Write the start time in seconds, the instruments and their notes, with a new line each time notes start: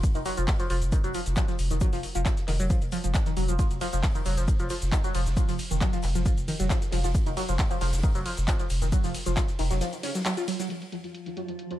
0.03 kick, closed hi-hat, shaker
0.15 sub bass F1, analog synth lead D#3, closed hi-hat, shaker
0.25 analog synth lead F#3, snare, open hi-hat, shaker
0.37 sub bass F1, analog synth lead F3, closed hi-hat, shaker
0.48 kick, snare, clap, closed hi-hat, open hi-hat, shaker
0.60 analog synth lead F3, closed hi-hat, shaker
0.70 sub bass F1, analog synth lead F3, open hi-hat, shaker
0.82 sub bass F1, closed hi-hat, shaker
0.92 analog synth lead D#3, kick, closed hi-hat, shaker
1.04 sub bass F1, analog synth lead F#3, closed hi-hat, shaker
1.14 analog synth lead F3, open hi-hat, shaker
1.26 sub bass F1, snare, closed hi-hat, shaker
1.36 analog synth lead F3, kick, snare, clap, closed hi-hat, shaker
1.48 analog synth lead F3, snare, closed hi-hat, shaker
1.59 sub bass F1, open hi-hat, shaker
1.71 sub bass F1, analog synth lead D#3, snare, closed hi-hat, shaker
1.81 analog synth lead F#3, kick, closed hi-hat, shaker
1.93 sub bass F1, analog synth lead F3, snare, open hi-hat, shaker
2.03 open hi-hat, shaker
2.15 sub bass F1, analog synth lead F3, closed hi-hat, shaker
2.26 analog synth lead F3, kick, snare, clap, closed hi-hat, shaker
2.37 snare, closed hi-hat, shaker
2.48 sub bass F1, analog synth lead D#3, snare, clap, open hi-hat
2.59 sub bass F1, analog synth lead F#3, closed hi-hat, shaker
2.70 analog synth lead F3, kick, closed hi-hat, shaker
2.82 sub bass F1, closed hi-hat, shaker
2.92 analog synth lead F3, open hi-hat, shaker
3.04 sub bass F1, analog synth lead F3, closed hi-hat, shaker
3.14 kick, snare, clap, closed hi-hat, shaker
3.26 analog synth lead D#3, snare, closed hi-hat, shaker
3.37 sub bass F1, analog synth lead F#3, open hi-hat, shaker
3.48 sub bass F1, analog synth lead F3, closed hi-hat, shaker
3.59 analog synth lead F3, kick, closed hi-hat, ride, shaker
3.71 sub bass F1, closed hi-hat, shaker
3.81 analog synth lead F3, snare, open hi-hat, ride, shaker
3.93 sub bass F1, analog synth lead F3, closed hi-hat, shaker
4.03 kick, snare, clap, closed hi-hat, open hi-hat, ride, shaker
4.15 analog synth lead D#3, closed hi-hat, shaker
4.26 sub bass F1, analog synth lead F#3, open hi-hat, ride, shaker
4.37 sub bass F1, analog synth lead F3, closed hi-hat, shaker
4.48 kick, closed hi-hat, ride, shaker
4.59 sub bass F1, analog synth lead F3, closed hi-hat, shaker
4.70 analog synth lead F3, open hi-hat, ride, shaker
4.82 sub bass F1, snare, closed hi-hat, shaker
4.92 analog synth lead D#3, kick, snare, clap, closed hi-hat, ride, shaker
5.04 analog synth lead F#3, snare, closed hi-hat, shaker
5.14 sub bass F1, analog synth lead F3, open hi-hat, ride, shaker
5.26 sub bass F1, snare, closed hi-hat, shaker
5.37 analog synth lead F3, kick, closed hi-hat, ride, shaker
5.48 sub bass F1, analog synth lead F3, snare, open hi-hat, shaker
5.58 open hi-hat, ride, shaker
5.71 sub bass F1, analog synth lead D#3, closed hi-hat, shaker
5.80 analog synth lead F#3, kick, snare, clap, closed hi-hat, ride, shaker
5.93 analog synth lead F3, snare, closed hi-hat, shaker
6.03 sub bass F1, clap, open hi-hat, ride, shaker
6.15 sub bass F1, analog synth lead F3, snare, closed hi-hat, shaker
6.26 analog synth lead F3, kick, closed hi-hat, ride, shaker
6.37 sub bass F1, closed hi-hat, shaker
6.48 analog synth lead D#3, open hi-hat, ride, shaker
6.59 sub bass F1, analog synth lead F#3, closed hi-hat, shaker
6.70 analog synth lead F3, kick, snare, clap, closed hi-hat, ride, shaker
6.81 snare, closed hi-hat, shaker
6.92 sub bass F1, analog synth lead F3, snare, open hi-hat, ride
7.04 sub bass F1, analog synth lead F3, snare, closed hi-hat, open hi-hat, shaker
7.15 kick, closed hi-hat, ride, shaker
7.26 sub bass F1, analog synth lead D#3, closed hi-hat, shaker
7.37 analog synth lead F#3, snare, open hi-hat, ride, shaker
7.48 sub bass F1, analog synth lead F3, closed hi-hat, shaker
7.59 kick, snare, clap, closed hi-hat, open hi-hat, ride, shaker
7.71 analog synth lead F3, closed hi-hat, shaker
7.80 sub bass F1, analog synth lead F3, snare, open hi-hat, ride
7.87 snare, open hi-hat
7.93 sub bass F1, snare, closed hi-hat, open hi-hat, shaker
7.98 snare, open hi-hat
8.03 analog synth lead D#3, kick, closed hi-hat, ride, shaker
8.15 sub bass F1, analog synth lead F#3, closed hi-hat, shaker
8.26 analog synth lead F3, open hi-hat, ride
8.37 sub bass F1, closed hi-hat, shaker
8.48 analog synth lead F3, kick, snare, clap, closed hi-hat, ride, shaker
8.59 analog synth lead F3, snare, closed hi-hat, shaker
8.70 sub bass F1, open hi-hat, ride, shaker
8.81 sub bass F1, analog synth lead D#3, snare, closed hi-hat, shaker
8.92 analog synth lead F#3, kick, closed hi-hat, ride, shaker
9.04 sub bass F1, analog synth lead F3, snare, open hi-hat, shaker
9.14 open hi-hat, ride, shaker
9.26 sub bass F1, analog synth lead F3, closed hi-hat, shaker
9.37 analog synth lead F3, kick, snare, clap, closed hi-hat, ride, shaker
9.48 snare, closed hi-hat, shaker
9.59 sub bass F1, analog synth lead D#3, open hi-hat, ride
9.71 sub bass F1, analog synth lead F#3, snare, closed hi-hat, shaker
9.81 analog synth lead F3, snare, closed hi-hat, open hi-hat, ride, shaker
9.93 closed hi-hat, shaker
10.03 analog synth lead C#4, snare, open hi-hat, ride
10.14 analog synth lead F#3, snare, closed hi-hat, open hi-hat, shaker
10.20 snare, open hi-hat
10.25 analog synth lead F#3, snare, clap, closed hi-hat, open hi-hat, ride, shaker
10.37 analog synth lead F4, closed hi-hat, shaker
10.48 analog synth lead F#3, open hi-hat, ride, shaker
10.60 analog synth lead F#3, snare, closed hi-hat, open hi-hat, shaker
10.70 synth drone F3 F4, analog synth lead F3, closed hi-hat
10.82 closed hi-hat
10.92 analog synth lead F3, closed hi-hat
11.04 analog synth lead F3, closed hi-hat
11.15 closed hi-hat
11.26 analog synth lead D#3, closed hi-hat
11.37 analog synth lead F#3, closed hi-hat
11.48 analog synth lead F3, closed hi-hat
11.59 closed hi-hat
11.71 analog synth lead F3, closed hi-hat